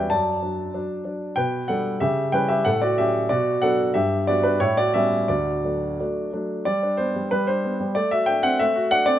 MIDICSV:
0, 0, Header, 1, 2, 480
1, 0, Start_track
1, 0, Key_signature, 2, "major"
1, 0, Tempo, 638978
1, 82, Time_signature, 2, 2, 24, 8
1, 2963, Tempo, 679502
1, 4883, Tempo, 643087
1, 6770, End_track
2, 0, Start_track
2, 0, Title_t, "Grand piano"
2, 0, Program_c, 0, 0
2, 0, Control_c, 0, 64, 127
2, 0, Note_on_c, 0, 40, 43
2, 0, Note_on_c, 0, 55, 35
2, 0, Note_on_c, 0, 61, 35
2, 0, Note_on_c, 0, 64, 33
2, 0, Note_on_c, 0, 66, 49
2, 0, Note_on_c, 0, 67, 45
2, 0, Note_on_c, 0, 71, 44
2, 0, Note_on_c, 0, 74, 62
2, 0, Note_on_c, 0, 76, 61
2, 0, Note_on_c, 0, 79, 66
2, 74, Note_on_c, 0, 81, 74
2, 76, Note_off_c, 0, 71, 0
2, 80, Note_off_c, 0, 79, 0
2, 82, Note_off_c, 0, 74, 0
2, 82, Note_on_c, 0, 42, 45
2, 82, Note_on_c, 0, 74, 51
2, 89, Control_c, 0, 64, 0
2, 93, Note_off_c, 0, 76, 0
2, 94, Note_off_c, 0, 55, 0
2, 95, Note_off_c, 0, 61, 0
2, 95, Note_off_c, 0, 66, 0
2, 96, Note_off_c, 0, 67, 0
2, 98, Note_off_c, 0, 40, 0
2, 98, Note_off_c, 0, 64, 0
2, 225, Control_c, 0, 64, 127
2, 313, Note_off_c, 0, 42, 0
2, 318, Note_on_c, 0, 54, 31
2, 319, Note_on_c, 0, 62, 38
2, 534, Note_off_c, 0, 54, 0
2, 534, Note_off_c, 0, 62, 0
2, 557, Note_on_c, 0, 54, 36
2, 560, Note_on_c, 0, 62, 42
2, 570, Control_c, 0, 64, 0
2, 773, Note_off_c, 0, 54, 0
2, 774, Note_off_c, 0, 62, 0
2, 787, Note_on_c, 0, 54, 36
2, 789, Note_on_c, 0, 62, 36
2, 1006, Note_off_c, 0, 74, 0
2, 1007, Note_off_c, 0, 54, 0
2, 1008, Note_off_c, 0, 62, 0
2, 1020, Note_on_c, 0, 79, 81
2, 1028, Note_on_c, 0, 47, 50
2, 1031, Note_on_c, 0, 71, 55
2, 1033, Note_off_c, 0, 81, 0
2, 1191, Control_c, 0, 64, 127
2, 1257, Note_off_c, 0, 71, 0
2, 1262, Note_on_c, 0, 78, 69
2, 1265, Note_off_c, 0, 47, 0
2, 1268, Note_off_c, 0, 79, 0
2, 1271, Note_on_c, 0, 55, 38
2, 1272, Note_on_c, 0, 69, 55
2, 1275, Note_on_c, 0, 62, 38
2, 1489, Note_off_c, 0, 55, 0
2, 1490, Note_off_c, 0, 62, 0
2, 1496, Note_off_c, 0, 69, 0
2, 1505, Note_on_c, 0, 76, 79
2, 1508, Note_off_c, 0, 78, 0
2, 1510, Note_on_c, 0, 49, 57
2, 1510, Note_on_c, 0, 67, 57
2, 1521, Control_c, 0, 64, 0
2, 1648, Control_c, 0, 64, 127
2, 1733, Note_off_c, 0, 67, 0
2, 1743, Note_off_c, 0, 49, 0
2, 1745, Note_on_c, 0, 79, 79
2, 1748, Note_off_c, 0, 76, 0
2, 1749, Note_on_c, 0, 55, 40
2, 1756, Note_on_c, 0, 61, 42
2, 1757, Note_on_c, 0, 71, 64
2, 1758, Note_on_c, 0, 64, 44
2, 1866, Note_off_c, 0, 71, 0
2, 1866, Note_on_c, 0, 76, 77
2, 1869, Note_off_c, 0, 79, 0
2, 1876, Note_on_c, 0, 67, 60
2, 1967, Note_off_c, 0, 55, 0
2, 1971, Note_off_c, 0, 61, 0
2, 1972, Note_off_c, 0, 64, 0
2, 1986, Note_off_c, 0, 67, 0
2, 1988, Note_on_c, 0, 78, 79
2, 1990, Note_off_c, 0, 76, 0
2, 1996, Note_on_c, 0, 45, 56
2, 1998, Note_on_c, 0, 69, 72
2, 1999, Control_c, 0, 64, 0
2, 2109, Note_off_c, 0, 69, 0
2, 2112, Note_off_c, 0, 78, 0
2, 2116, Note_on_c, 0, 74, 78
2, 2124, Note_on_c, 0, 66, 58
2, 2147, Control_c, 0, 64, 127
2, 2230, Note_off_c, 0, 45, 0
2, 2233, Note_off_c, 0, 66, 0
2, 2237, Note_off_c, 0, 74, 0
2, 2237, Note_on_c, 0, 76, 77
2, 2243, Note_on_c, 0, 54, 41
2, 2247, Note_on_c, 0, 61, 39
2, 2249, Note_on_c, 0, 67, 56
2, 2459, Note_off_c, 0, 54, 0
2, 2461, Note_off_c, 0, 61, 0
2, 2469, Note_off_c, 0, 67, 0
2, 2473, Note_on_c, 0, 74, 82
2, 2478, Note_on_c, 0, 47, 62
2, 2480, Note_off_c, 0, 76, 0
2, 2484, Note_on_c, 0, 66, 61
2, 2485, Control_c, 0, 64, 0
2, 2614, Control_c, 0, 64, 127
2, 2706, Note_off_c, 0, 66, 0
2, 2712, Note_off_c, 0, 47, 0
2, 2716, Note_on_c, 0, 78, 80
2, 2717, Note_off_c, 0, 74, 0
2, 2722, Note_on_c, 0, 54, 44
2, 2725, Note_on_c, 0, 69, 64
2, 2728, Note_on_c, 0, 59, 40
2, 2730, Note_on_c, 0, 62, 45
2, 2938, Note_off_c, 0, 54, 0
2, 2941, Note_off_c, 0, 59, 0
2, 2943, Note_off_c, 0, 62, 0
2, 2947, Note_off_c, 0, 69, 0
2, 2959, Note_off_c, 0, 78, 0
2, 2959, Note_on_c, 0, 76, 83
2, 2966, Control_c, 0, 64, 0
2, 2967, Note_on_c, 0, 43, 53
2, 2969, Note_on_c, 0, 67, 59
2, 3116, Control_c, 0, 64, 127
2, 3180, Note_off_c, 0, 67, 0
2, 3188, Note_off_c, 0, 43, 0
2, 3191, Note_off_c, 0, 76, 0
2, 3196, Note_on_c, 0, 74, 76
2, 3201, Note_on_c, 0, 55, 38
2, 3204, Note_on_c, 0, 59, 37
2, 3204, Note_on_c, 0, 66, 57
2, 3209, Note_on_c, 0, 62, 42
2, 3306, Note_off_c, 0, 62, 0
2, 3307, Note_off_c, 0, 66, 0
2, 3309, Note_on_c, 0, 71, 73
2, 3311, Note_off_c, 0, 74, 0
2, 3317, Note_on_c, 0, 62, 56
2, 3408, Note_off_c, 0, 55, 0
2, 3410, Note_off_c, 0, 59, 0
2, 3423, Note_off_c, 0, 62, 0
2, 3426, Note_on_c, 0, 73, 84
2, 3427, Note_off_c, 0, 71, 0
2, 3429, Note_on_c, 0, 45, 55
2, 3433, Control_c, 0, 64, 0
2, 3434, Note_on_c, 0, 64, 62
2, 3541, Note_off_c, 0, 64, 0
2, 3545, Note_off_c, 0, 73, 0
2, 3549, Note_on_c, 0, 74, 84
2, 3558, Note_on_c, 0, 66, 57
2, 3581, Control_c, 0, 64, 127
2, 3658, Note_off_c, 0, 45, 0
2, 3663, Note_off_c, 0, 66, 0
2, 3665, Note_on_c, 0, 76, 79
2, 3666, Note_off_c, 0, 74, 0
2, 3671, Note_on_c, 0, 55, 38
2, 3673, Note_on_c, 0, 67, 56
2, 3674, Note_on_c, 0, 59, 43
2, 3676, Note_on_c, 0, 61, 45
2, 3887, Note_off_c, 0, 55, 0
2, 3888, Note_off_c, 0, 59, 0
2, 3889, Note_off_c, 0, 61, 0
2, 3895, Note_off_c, 0, 67, 0
2, 3907, Note_off_c, 0, 76, 0
2, 3908, Note_on_c, 0, 74, 70
2, 3915, Note_on_c, 0, 38, 49
2, 3918, Control_c, 0, 64, 0
2, 3918, Note_on_c, 0, 66, 48
2, 4034, Control_c, 0, 64, 127
2, 4151, Note_off_c, 0, 38, 0
2, 4163, Note_on_c, 0, 54, 37
2, 4165, Note_on_c, 0, 57, 32
2, 4170, Note_on_c, 0, 62, 39
2, 4379, Note_off_c, 0, 54, 0
2, 4380, Note_off_c, 0, 57, 0
2, 4383, Note_off_c, 0, 62, 0
2, 4409, Control_c, 0, 64, 0
2, 4409, Note_on_c, 0, 54, 40
2, 4414, Note_on_c, 0, 57, 36
2, 4417, Note_on_c, 0, 62, 42
2, 4618, Note_off_c, 0, 66, 0
2, 4623, Note_off_c, 0, 54, 0
2, 4626, Note_off_c, 0, 57, 0
2, 4627, Note_off_c, 0, 62, 0
2, 4642, Note_off_c, 0, 74, 0
2, 4648, Note_on_c, 0, 54, 35
2, 4651, Note_on_c, 0, 57, 36
2, 4652, Note_on_c, 0, 62, 40
2, 4860, Note_off_c, 0, 54, 0
2, 4862, Note_off_c, 0, 57, 0
2, 4862, Note_off_c, 0, 62, 0
2, 4877, Note_on_c, 0, 74, 76
2, 4885, Note_on_c, 0, 55, 49
2, 5008, Note_on_c, 0, 62, 42
2, 5034, Control_c, 0, 64, 127
2, 5115, Note_on_c, 0, 72, 70
2, 5122, Note_on_c, 0, 59, 42
2, 5125, Note_off_c, 0, 74, 0
2, 5202, Note_off_c, 0, 62, 0
2, 5243, Note_off_c, 0, 55, 0
2, 5255, Note_on_c, 0, 55, 44
2, 5320, Note_off_c, 0, 59, 0
2, 5362, Note_off_c, 0, 55, 0
2, 5365, Note_off_c, 0, 72, 0
2, 5367, Note_on_c, 0, 71, 78
2, 5373, Note_on_c, 0, 55, 51
2, 5378, Control_c, 0, 64, 0
2, 5486, Note_on_c, 0, 72, 75
2, 5490, Note_off_c, 0, 71, 0
2, 5495, Note_on_c, 0, 62, 48
2, 5615, Note_on_c, 0, 59, 46
2, 5687, Note_off_c, 0, 62, 0
2, 5723, Note_off_c, 0, 55, 0
2, 5734, Note_on_c, 0, 55, 45
2, 5807, Note_off_c, 0, 59, 0
2, 5843, Note_on_c, 0, 74, 81
2, 5850, Note_on_c, 0, 57, 58
2, 5851, Note_off_c, 0, 72, 0
2, 5854, Note_off_c, 0, 55, 0
2, 5966, Note_on_c, 0, 76, 91
2, 5968, Note_off_c, 0, 74, 0
2, 5970, Note_on_c, 0, 66, 48
2, 6017, Control_c, 0, 64, 127
2, 6077, Note_on_c, 0, 79, 86
2, 6085, Note_on_c, 0, 62, 43
2, 6090, Note_off_c, 0, 76, 0
2, 6163, Note_off_c, 0, 66, 0
2, 6203, Note_on_c, 0, 78, 96
2, 6205, Note_off_c, 0, 79, 0
2, 6205, Note_on_c, 0, 60, 51
2, 6280, Note_off_c, 0, 62, 0
2, 6317, Note_off_c, 0, 57, 0
2, 6325, Note_on_c, 0, 76, 99
2, 6326, Note_off_c, 0, 78, 0
2, 6328, Note_on_c, 0, 57, 59
2, 6340, Control_c, 0, 64, 0
2, 6398, Note_off_c, 0, 60, 0
2, 6447, Note_on_c, 0, 66, 60
2, 6561, Note_on_c, 0, 78, 105
2, 6563, Note_off_c, 0, 76, 0
2, 6564, Note_on_c, 0, 62, 55
2, 6636, Note_off_c, 0, 66, 0
2, 6672, Note_on_c, 0, 74, 94
2, 6678, Note_on_c, 0, 60, 54
2, 6681, Note_off_c, 0, 78, 0
2, 6753, Note_off_c, 0, 62, 0
2, 6770, Note_off_c, 0, 57, 0
2, 6770, Note_off_c, 0, 60, 0
2, 6770, Note_off_c, 0, 74, 0
2, 6770, End_track
0, 0, End_of_file